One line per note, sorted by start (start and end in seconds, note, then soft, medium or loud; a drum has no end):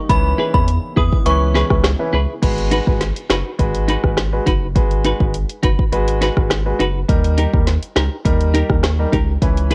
0.09 0.34 C#2 loud
0.09 2.40 C#3 medium
0.09 0.50 E3 loud
0.09 2.40 E3 medium
0.09 2.40 G#3 medium
0.09 2.40 B3 medium
0.09 0.50 C#4 medium
0.09 2.40 E4 loud
0.09 0.51 B4 loud
0.09 0.23 B5 loud
0.09 kick loud
0.09 closed hi-hat medium
0.38 0.58 E4 medium
0.38 0.58 G#4 medium
0.38 0.58 B4 medium
0.54 0.79 E2 medium
0.54 0.67 E3 medium
0.54 0.67 C#4 medium
0.54 0.67 B4 medium
0.54 0.66 B5 medium
0.54 kick medium
0.68 closed hi-hat medium
0.96 1.10 E2 loud
0.96 1.16 E4 medium
0.96 1.16 G#4 medium
0.96 1.17 B4 medium
0.96 1.11 D#6 medium
0.96 kick medium
1.13 kick medium
1.26 1.64 C#2 loud
1.26 1.67 E3 medium
1.26 1.67 C#4 medium
1.26 1.67 B4 loud
1.26 1.68 C#6 medium
1.26 closed hi-hat medium
1.41 muted clean electric guitar stroke medium
1.55 1.74 E4 medium
1.55 1.74 G#4 loud
1.55 1.75 B4 medium
1.55 snare medium
1.70 1.95 C#2 medium
1.70 1.83 E3 medium
1.70 1.83 C#4 medium
1.70 1.84 B4 medium
1.70 kick medium
1.70 cross-stick medium
1.84 cross-stick loud
1.84 snare loud
1.84 closed hi-hat medium
1.99 2.12 E3 medium
1.99 2.13 C#4 medium
1.99 2.13 B4 medium
2.13 2.27 C#2 medium
2.13 2.32 E4 medium
2.13 2.33 G#4 medium
2.13 2.33 B4 medium
2.42 2.81 G#1 loud
2.42 2.83 G#3 medium
2.42 2.83 F#4 medium
2.42 2.84 B4 loud
2.42 kick loud
2.42 closed hi-hat medium
2.42 crash medium
2.58 closed hi-hat soft
2.71 2.91 D#4 medium
2.71 2.91 F#4 medium
2.71 2.91 B4 loud
2.71 closed hi-hat medium
2.87 3.12 G#1 medium
2.87 3.00 G#3 medium
2.87 3.00 F#4 medium
2.87 3.00 B4 medium
2.87 kick medium
3.01 snare medium
3.01 closed hi-hat medium
3.16 closed hi-hat medium
3.30 3.43 F#1 medium
3.30 3.49 D#4 medium
3.30 3.49 F#4 medium
3.30 3.50 B4 medium
3.30 cross-stick medium
3.30 snare loud
3.30 closed hi-hat medium
3.59 3.97 G#1 medium
3.59 4.00 G#3 medium
3.59 4.00 F#4 medium
3.59 4.00 B4 loud
3.59 kick medium
3.59 closed hi-hat medium
3.75 closed hi-hat medium
3.88 4.07 D#4 medium
3.88 4.08 F#4 medium
3.88 4.08 B4 loud
3.88 closed hi-hat medium
4.03 4.40 G#1 medium
4.03 4.16 G#3 medium
4.03 4.17 F#4 medium
4.03 4.17 B4 medium
4.03 kick loud
4.03 cross-stick loud
4.17 cross-stick medium
4.17 snare loud
4.17 closed hi-hat medium
4.32 4.45 G#3 medium
4.32 4.46 F#4 medium
4.32 4.46 B4 medium
4.46 4.77 F#1 medium
4.46 4.65 D#4 medium
4.46 4.66 F#4 medium
4.46 4.66 B4 medium
4.46 kick medium
4.46 closed hi-hat medium
4.75 5.14 G#1 loud
4.75 5.16 G#3 medium
4.75 5.17 F#4 medium
4.75 5.17 B4 loud
4.75 kick loud
4.75 closed hi-hat medium
4.91 closed hi-hat soft
5.05 5.24 D#4 medium
5.05 5.24 F#4 medium
5.05 5.25 B4 medium
5.05 closed hi-hat medium
5.20 5.45 G#1 loud
5.20 5.33 G#3 medium
5.20 5.33 F#4 medium
5.20 5.33 B4 medium
5.20 kick medium
5.34 closed hi-hat medium
5.49 closed hi-hat soft
5.63 5.76 F#1 medium
5.63 5.82 D#4 medium
5.63 5.82 F#4 loud
5.63 5.83 B4 loud
5.63 kick medium
5.63 closed hi-hat medium
5.79 kick medium
5.92 6.30 G#1 loud
5.92 6.33 G#3 medium
5.92 6.33 F#4 medium
5.92 6.33 B4 loud
5.92 closed hi-hat medium
6.08 muted clean electric guitar stroke soft
6.08 closed hi-hat medium
6.21 6.40 D#4 medium
6.21 6.41 F#4 medium
6.21 6.41 B4 medium
6.21 snare medium
6.21 closed hi-hat medium
6.37 6.73 G#1 medium
6.37 6.50 G#3 medium
6.37 6.50 F#4 medium
6.37 6.50 B4 medium
6.37 kick medium
6.37 cross-stick medium
6.50 cross-stick medium
6.50 snare loud
6.50 closed hi-hat medium
6.66 6.79 G#3 medium
6.66 6.79 F#4 medium
6.66 6.79 B4 medium
6.79 7.05 F#1 medium
6.79 6.98 D#4 medium
6.79 6.99 F#4 loud
6.79 6.99 B4 loud
6.79 closed hi-hat medium
7.08 7.47 D#2 loud
7.08 7.49 G3 medium
7.08 7.49 D#4 medium
7.08 7.50 A#4 loud
7.08 kick loud
7.08 closed hi-hat medium
7.24 closed hi-hat soft
7.38 7.57 D#4 medium
7.38 7.57 G4 medium
7.38 7.57 A#4 medium
7.38 closed hi-hat medium
7.53 7.78 D#2 loud
7.53 7.66 G3 medium
7.53 7.66 D#4 medium
7.53 7.66 A#4 medium
7.53 kick medium
7.67 snare medium
7.67 closed hi-hat medium
7.82 closed hi-hat soft
7.96 8.09 C#2 loud
7.96 8.15 D#4 medium
7.96 8.15 G4 medium
7.96 8.16 A#4 loud
7.96 cross-stick medium
7.96 snare loud
7.96 closed hi-hat medium
8.25 8.63 D#2 medium
8.25 8.66 G3 medium
8.25 8.66 D#4 medium
8.25 8.66 A#4 loud
8.25 kick medium
8.25 closed hi-hat medium
8.41 closed hi-hat medium
8.54 8.73 D#4 medium
8.54 8.74 G4 medium
8.54 8.74 A#4 loud
8.54 closed hi-hat medium
8.70 9.06 D#2 medium
8.70 8.83 G3 medium
8.70 8.83 D#4 medium
8.70 8.83 A#4 medium
8.70 kick medium
8.70 cross-stick medium
8.83 cross-stick medium
8.83 snare loud
8.83 closed hi-hat medium
8.99 9.12 G3 medium
8.99 9.12 D#4 medium
8.99 9.12 A#4 medium
9.12 9.38 C#2 loud
9.12 9.31 D#4 medium
9.12 9.32 G4 medium
9.12 9.32 A#4 medium
9.12 kick medium
9.12 closed hi-hat medium
9.42 9.75 C#2 loud
9.42 9.75 E3 medium
9.42 9.75 C#4 medium
9.42 9.75 B4 loud
9.42 kick loud
9.42 closed hi-hat medium
9.57 closed hi-hat soft
9.71 9.75 E4 medium
9.71 9.75 G#4 loud
9.71 closed hi-hat medium